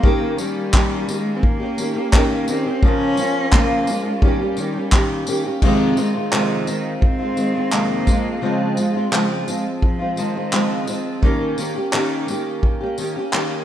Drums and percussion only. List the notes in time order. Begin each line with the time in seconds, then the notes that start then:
0.03 kick
0.38 tambourine
0.73 kick, clap
1.09 tambourine
1.43 kick
1.78 tambourine
2.13 kick, clap
2.48 tambourine
2.83 kick
3.17 tambourine
3.52 kick, clap
3.87 tambourine
4.22 kick
4.57 tambourine
4.92 kick, clap
5.27 tambourine
5.62 kick, crash
5.97 tambourine
6.33 clap
6.67 tambourine
7.02 kick
7.37 tambourine
7.72 clap
8.07 kick, tambourine
8.77 tambourine
9.13 clap
9.48 tambourine
9.82 kick
10.17 tambourine
10.53 clap
10.87 tambourine
11.23 kick
11.58 tambourine
11.93 clap
12.28 tambourine
12.63 kick
12.98 tambourine
13.33 clap